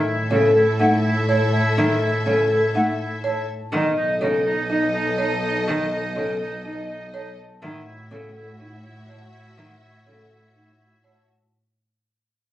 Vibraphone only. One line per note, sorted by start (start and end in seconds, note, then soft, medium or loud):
0.00 0.14 E5 medium
0.31 0.63 A4 medium
0.80 1.11 E5 medium
1.29 1.60 A5 medium
1.77 2.09 E5 medium
2.26 2.58 A4 medium
2.75 3.07 E5 medium
3.24 3.55 A5 medium
3.73 4.04 D#5 medium
4.21 4.53 A4 medium
4.70 5.02 D#5 medium
5.19 5.50 A5 medium
5.68 5.99 D#5 medium
6.16 6.48 A4 medium
6.65 6.97 D#5 medium
7.14 7.46 A5 medium
7.63 7.94 E5 medium
8.11 8.43 A4 medium
9.09 9.41 A5 medium
9.58 9.89 E5 medium
10.07 10.38 A4 medium
11.04 11.36 A5 medium